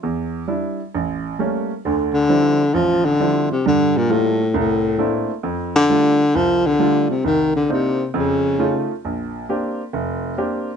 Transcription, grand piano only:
X:1
M:4/4
L:1/8
Q:"Swing" 1/4=133
K:Dm
V:1 name="Grand piano"
E,,2 [G,DE] z A,,,2 [G,A,B,^C] z | [D,,D,]2 [F,G,CDE] z A,,,2 [F,G,CDE] z | [G,,G,]2 [G,A,B,F] z C,,2 [A,B,CDE] z | F,,2 [G,A,DF] z C,,2 [G,A,DF] z |
C,,2 [B,CD_E] z F,,2 [A,^CEF] z | B,,,2 [B,CDG] z F,,,2 [B,CDG] z |]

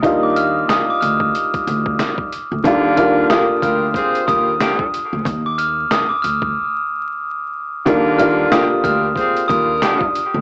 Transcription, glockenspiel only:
X:1
M:4/4
L:1/16
Q:"Swing 16ths" 1/4=92
K:Eb
V:1 name="Glockenspiel"
z d' f'2 e' d' f'6- f' z3 | z2 f'2 e'2 f'4 e'6 | z d' f'2 e' d' f'6- f' z3 | z2 f'2 e'2 f'4 e'6 |]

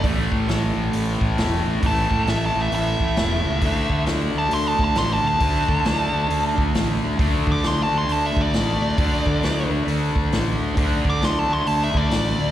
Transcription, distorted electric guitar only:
X:1
M:4/4
L:1/8
Q:"Swing" 1/4=134
K:D
V:1 name="Distorted electric guitar"
[A,,E,A,]8 | [A,,E,A,]8 | [D,A,D]8 | [D,A,D]8 |
[D,A,D]8 | [D,A,D]8 | [D,A,D]8 |]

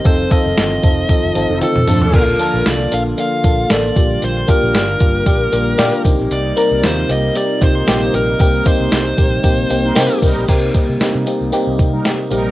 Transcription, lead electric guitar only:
X:1
M:4/4
L:1/8
Q:"Swing 16ths" 1/4=115
K:Cdor
V:1 name="Lead electric guitar"
c e4- e A2 | B2 d f f2 d2 | c B6 z | d2 c e d c2 B |
B c6 z | z8 |]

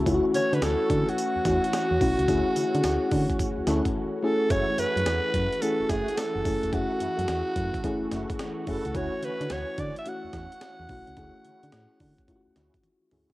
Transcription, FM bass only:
X:1
M:4/4
L:1/16
Q:"Swing 16ths" 1/4=108
K:F#m
V:1 name="FM bass" clef=bass
D,, z D, D, D,, z D, z2 E,, E,, z2 E,, B,,, C,, | D,, z D, D, D,, z D, z2 D,, D,, z4 z | F,,, z F,, F,, E,, z F,, z2 F,,, F,,, z2 F,,, F,,, E,,, | F,,, z F,, F,, E,, z F,, z2 F,,, F,,, z3 F,,, C,, |
D,, z D, D, D,, z D, z2 E,, E,, z2 E,, B,,, C,, | D,, z D, D, A,, z D, z2 D,, D,, z3 D,, C,, |]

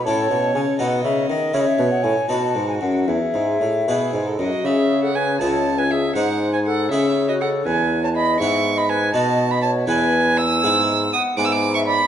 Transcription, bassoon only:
X:1
M:6/8
L:1/8
Q:3/8=80
K:E
V:1 name="Bassoon" clef=bass
A,, B,, C, B,, C, D, | C, B,, A,, B,, G,, F,, | E,, G,, A,, B,, G,, F,, | [K:C#m] C,3 C,,3 |
G,,3 C,3 | E,,3 G,,3 | B,,3 E,,3 | [K:E] G,,2 z G,,3 |]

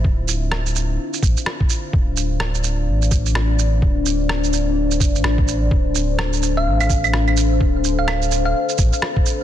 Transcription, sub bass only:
X:1
M:4/4
L:1/16
Q:"Swing 16ths" 1/4=127
K:Dm
V:1 name="Sub bass" clef=bass
D,,,8 z2 A,,, z4 z | D,,,8 A,,,8 | D,,,8- D,,,2 F,,, A,,, A,,,4 | D,,,8 A,,,8 |
D,,,8 z2 A,,, z4 z |]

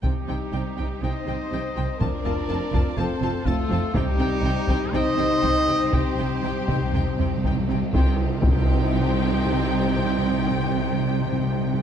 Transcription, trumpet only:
X:1
M:4/4
L:1/8
Q:1/4=122
K:Cdor
V:1 name="Trumpet"
G4 e4 | d4 c2 A2 | G4 e4 | c6- c z |
c z c6- | c8 |]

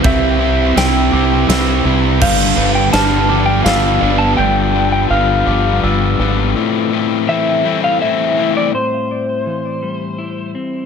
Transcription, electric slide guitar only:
X:1
M:3/4
L:1/16
Q:1/4=83
K:Am
V:1 name="Electric slide guitar"
e4 g6 z2 | f3 g a3 g f3 a | g3 g f4 z4 | z4 e3 f e3 d |
c8- c2 z2 |]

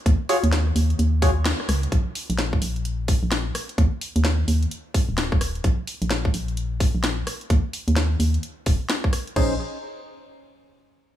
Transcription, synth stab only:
X:1
M:4/4
L:1/8
Q:"Swing 16ths" 1/4=129
K:Bbm
V:1 name="Synth stab"
z [FGAd] z3 [FGAd] z2 | z8 | z8 | z8 |
z8 | [DEAc] z6 z |]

